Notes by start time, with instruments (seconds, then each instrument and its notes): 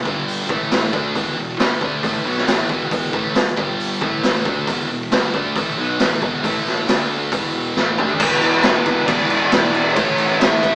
0.05 picked electric bass G1, overdriven electric guitar G2 D3 G3, kick
0.28 open hi-hat
0.49 picked electric bass A1, overdriven electric guitar A2 E3 A3, kick
0.71 snare, open hi-hat
0.92 picked electric bass D2, overdriven electric guitar D3 A3 D4, kick
1.14 picked electric bass E1, overdriven electric guitar E2 B2 E3, kick, open hi-hat
1.37 picked electric bass E1, overdriven electric guitar E2 B2
1.58 picked electric bass G1, overdriven electric guitar G2 D3 G3, snare, open hi-hat
1.81 picked electric bass D2, overdriven electric guitar D3 A3 D4, kick
2.03 picked electric bass A1, overdriven electric guitar A2 E3 A3, kick, open hi-hat
2.25 picked electric bass B1, overdriven electric guitar B2 F#3 B3
2.37 snare
2.47 picked electric bass A1, overdriven electric guitar A2 E3 A3, snare, open hi-hat
2.69 picked electric bass E1, overdriven electric guitar E2 B2 E3, kick
2.91 kick, open hi-hat
3.13 picked electric bass A1, overdriven electric guitar A2 E3 A3, kick
3.34 picked electric bass E1, overdriven electric guitar E2 B2, snare, open hi-hat
3.57 picked electric bass G1, overdriven electric guitar G2 D3 G3, kick
3.80 open hi-hat
4.01 picked electric bass A1, overdriven electric guitar A2 E3 A3, kick
4.23 snare, open hi-hat
4.45 picked electric bass D2, overdriven electric guitar D3 A3 D4, kick
4.67 picked electric bass E1, overdriven electric guitar E2 B2 E3, kick, open hi-hat
4.90 picked electric bass E1, overdriven electric guitar E2 B2
5.11 picked electric bass G1, overdriven electric guitar G2 D3 G3, snare, open hi-hat
5.34 picked electric bass D2, overdriven electric guitar D3 A3 D4, kick
5.56 picked electric bass A1, overdriven electric guitar A2 E3 A3, kick, open hi-hat
5.78 picked electric bass B1, overdriven electric guitar B2 F#3 B3
5.99 picked electric bass A1, overdriven electric guitar A2 E3 A3, snare, open hi-hat
6.21 picked electric bass E1, overdriven electric guitar E2 B2 E3, kick
6.43 picked electric bass A1, overdriven electric guitar A2 E3 A3, kick, open hi-hat
6.66 snare
6.87 picked electric bass D2, overdriven electric guitar D3 A3 D4, snare, open hi-hat
7.32 picked electric bass E1, overdriven electric guitar E2 B2 E3, kick, open hi-hat
7.75 picked electric bass A1, overdriven electric guitar A2 E3 A3, snare
7.98 picked electric bass D2, overdriven electric guitar D3 A3 D4, mid tom
8.09 floor tom
8.20 picked electric bass E1, overdriven electric guitar E2 B2 E3, lead electric guitar B4, kick, crash
8.41 picked electric bass E2, crash
8.63 picked electric bass E1, lead electric guitar B4, snare, crash
8.85 picked electric bass E1, kick, crash
9.06 picked electric bass E1, overdriven electric guitar E2 B2, lead electric guitar D5, kick, crash
9.11 overdriven electric guitar E3
9.30 picked electric bass E1, crash
9.52 picked electric bass E1, snare, crash
9.74 picked electric bass E1, crash
9.94 picked electric bass A1, overdriven electric guitar A2 E3, lead electric guitar C#5, kick, crash
9.99 overdriven electric guitar A3
10.18 picked electric bass A1, crash
10.39 picked electric bass A1, lead electric guitar E5, snare, crash
10.63 picked electric bass A1, kick, crash